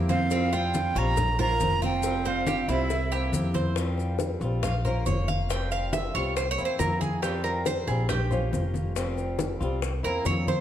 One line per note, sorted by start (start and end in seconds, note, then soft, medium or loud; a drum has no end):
0.00 0.90 F2 medium
0.00 0.30 E3 soft
0.00 0.31 A#3 medium
0.00 0.31 C4 medium
0.00 0.31 E4 soft
0.09 0.50 C4 medium
0.09 0.30 C5 medium
0.09 0.55 F5 loud
0.09 cowbell medium
0.09 high conga medium
0.09 maracas soft
0.31 0.95 F3 medium
0.31 0.95 G3 medium
0.31 0.52 C4 medium
0.31 0.97 C4 medium
0.31 0.95 F4 medium
0.31 cowbell loud
0.31 high conga soft
0.31 maracas medium
0.53 0.96 C4 medium
0.53 0.95 F4 medium
0.53 1.00 G5 loud
0.53 high conga soft
0.53 maracas soft
0.74 cowbell medium
0.74 high conga medium
0.74 maracas medium
0.95 1.56 A#1 loud
0.95 1.17 G3 medium
0.95 1.17 C4 medium
0.95 1.17 F4 medium
0.95 1.38 F4 loud
0.95 1.38 C#5 medium
0.95 1.40 A#5 loud
0.95 maracas soft
1.17 muted steel-string acoustic guitar stroke medium
1.17 cowbell loud
1.17 high conga soft
1.17 low conga medium
1.17 maracas medium
1.39 1.59 A#3 medium
1.39 1.59 C#4 medium
1.39 1.80 F4 medium
1.39 1.60 F4 medium
1.39 1.81 A#4 medium
1.39 1.60 C5 medium
1.39 1.81 A#5 loud
1.39 high conga soft
1.39 low conga medium
1.39 maracas soft
1.60 2.63 F1 medium
1.60 2.03 A#3 soft
1.60 2.03 C#4 medium
1.60 2.04 F4 medium
1.60 2.04 C5 medium
1.60 cowbell medium
1.60 high conga medium
1.60 maracas medium
1.82 2.23 C4 medium
1.82 2.24 F4 medium
1.82 2.29 G5 medium
1.82 high conga medium
1.82 maracas soft
2.03 2.68 F3 medium
2.03 2.68 G3 medium
2.03 2.68 C4 medium
2.03 2.67 F4 medium
2.03 cowbell loud
2.03 high conga soft
2.03 maracas medium
2.25 2.68 C4 medium
2.25 2.46 C5 medium
2.25 2.70 F5 loud
2.25 cowbell medium
2.25 high conga soft
2.25 maracas soft
2.47 2.68 G4 medium
2.47 cowbell medium
2.47 high conga medium
2.47 maracas medium
2.68 3.29 C2 medium
2.68 2.90 G3 medium
2.68 2.90 C4 medium
2.68 3.30 C4 medium
2.68 3.11 E4 medium
2.68 2.89 F4 medium
2.68 3.31 E5 medium
2.68 cowbell medium
2.68 maracas soft
2.90 muted steel-string acoustic guitar stroke medium
2.90 cowbell loud
2.90 high conga soft
2.90 maracas medium
3.12 3.32 E3 medium
3.12 3.33 A#3 medium
3.12 3.33 C4 medium
3.12 3.33 E4 medium
3.12 3.54 G4 medium
3.12 cowbell medium
3.12 high conga soft
3.12 maracas soft
3.32 4.35 F2 medium
3.32 3.76 E3 medium
3.32 3.76 A#3 medium
3.32 3.77 C4 soft
3.32 3.77 E4 medium
3.32 cowbell medium
3.32 high conga medium
3.32 maracas medium
3.54 3.76 C5 medium
3.54 cowbell medium
3.54 high conga medium
3.54 maracas soft
3.76 4.41 F3 medium
3.76 4.41 G3 medium
3.76 4.42 C4 medium
3.76 4.40 F4 medium
3.76 high bongo medium
3.76 high conga soft
3.76 maracas medium
3.98 high bongo soft
3.98 high conga soft
3.98 maracas soft
4.19 high bongo medium
4.19 high conga medium
4.19 maracas medium
4.41 5.02 A#1 loud
4.41 4.63 G3 medium
4.41 4.63 C4 medium
4.41 4.62 F4 medium
4.41 high bongo soft
4.41 maracas soft
4.63 4.84 F5 medium
4.63 muted steel-string acoustic guitar stroke medium
4.63 high bongo medium
4.63 high conga soft
4.63 low conga medium
4.63 maracas medium
4.85 5.05 A#3 medium
4.85 5.05 C#4 medium
4.85 5.06 F4 medium
4.85 5.06 A#4 medium
4.85 5.06 C5 medium
4.85 high bongo soft
4.85 high conga soft
4.85 low conga medium
4.85 maracas soft
5.06 6.08 F1 medium
5.06 5.48 A#3 soft
5.06 5.49 C#4 soft
5.06 5.49 F4 medium
5.06 5.50 C5 medium
5.06 5.27 C#5 medium
5.06 high bongo soft
5.06 low bongo medium
5.06 high conga medium
5.06 maracas medium
5.28 5.49 F5 medium
5.28 high conga medium
5.28 maracas soft
5.49 6.13 F3 medium
5.49 6.14 G3 medium
5.49 6.15 C4 medium
5.49 6.13 F4 medium
5.49 5.71 G5 medium
5.49 high bongo medium
5.49 high conga soft
5.49 maracas medium
5.71 5.93 F5 medium
5.71 high bongo soft
5.71 high conga soft
5.71 maracas soft
5.93 6.14 E5 medium
5.93 high bongo medium
5.93 high conga medium
5.93 maracas medium
6.14 6.55 C2 loud
6.14 6.37 G3 medium
6.14 6.36 C4 medium
6.14 6.35 F4 medium
6.14 6.36 C#5 medium
6.14 high bongo soft
6.14 maracas soft
6.36 6.50 C5 medium
6.36 muted steel-string acoustic guitar stroke medium
6.36 high bongo medium
6.36 high conga soft
6.36 maracas medium
6.51 6.65 C#5 loud
6.58 6.78 E2 medium
6.58 6.78 E3 medium
6.58 6.78 A#3 medium
6.58 6.79 C4 medium
6.58 6.79 E4 medium
6.58 high bongo soft
6.58 high conga soft
6.58 maracas soft
6.65 6.79 C5 medium
6.79 7.82 F2 medium
6.79 7.22 E3 medium
6.79 7.22 A#3 soft
6.79 7.22 C4 soft
6.79 7.23 E4 medium
6.79 7.00 A#4 medium
6.79 high bongo soft
6.79 low bongo medium
6.79 high conga medium
6.79 maracas medium
7.01 7.22 G#4 medium
7.01 high conga medium
7.01 maracas soft
7.22 7.87 F3 medium
7.22 7.87 G3 medium
7.22 7.88 C4 medium
7.22 7.86 F4 medium
7.22 7.43 G4 medium
7.22 high bongo medium
7.22 high conga soft
7.22 maracas medium
7.44 7.65 A#4 medium
7.44 high bongo soft
7.44 high conga soft
7.44 maracas soft
7.66 7.87 C5 loud
7.66 high bongo medium
7.66 high conga medium
7.66 maracas medium
7.87 8.48 A#1 loud
7.87 8.09 G3 medium
7.87 8.09 C4 medium
7.87 8.08 F4 medium
7.87 8.09 G#4 medium
7.87 high bongo soft
7.87 maracas soft
8.09 9.35 G4 medium
8.09 muted steel-string acoustic guitar stroke medium
8.09 high bongo medium
8.09 high conga soft
8.09 low conga medium
8.09 maracas medium
8.31 8.50 A#3 medium
8.31 8.51 C#4 medium
8.31 8.52 F4 medium
8.31 8.52 C5 medium
8.31 high bongo soft
8.31 high conga soft
8.31 low conga medium
8.31 maracas soft
8.51 9.55 F1 medium
8.51 8.94 A#3 soft
8.51 8.95 C#4 soft
8.51 8.95 F4 medium
8.51 8.96 C5 medium
8.51 high bongo soft
8.51 low bongo medium
8.51 high conga medium
8.51 maracas medium
8.74 high conga medium
8.74 maracas soft
8.95 9.59 F3 medium
8.95 9.60 G3 medium
8.95 9.61 C4 medium
8.95 9.59 F4 medium
8.95 high bongo medium
8.95 high conga soft
8.95 maracas medium
9.17 high bongo soft
9.17 high conga soft
9.17 maracas soft
9.39 high bongo medium
9.39 high conga medium
9.39 maracas medium
9.60 10.01 C2 loud
9.60 9.82 G3 medium
9.60 9.81 C4 medium
9.60 9.81 F4 medium
9.60 high bongo soft
9.60 maracas soft
9.82 muted steel-string acoustic guitar stroke medium
9.82 high bongo medium
9.82 high conga soft
9.82 maracas medium
10.03 10.24 E2 medium
10.03 10.24 E3 medium
10.03 10.25 A#3 medium
10.03 10.25 C4 medium
10.03 10.24 E4 medium
10.03 10.25 A#4 medium
10.03 high bongo soft
10.03 high conga soft
10.03 maracas soft
10.25 10.61 F2 medium
10.25 10.61 E3 soft
10.25 10.61 A#3 medium
10.25 10.61 C4 soft
10.25 10.61 E4 medium
10.25 10.47 C#5 medium
10.25 high bongo soft
10.25 low bongo medium
10.25 high conga medium
10.25 maracas medium
10.47 10.61 C5 medium
10.47 high conga medium
10.47 maracas soft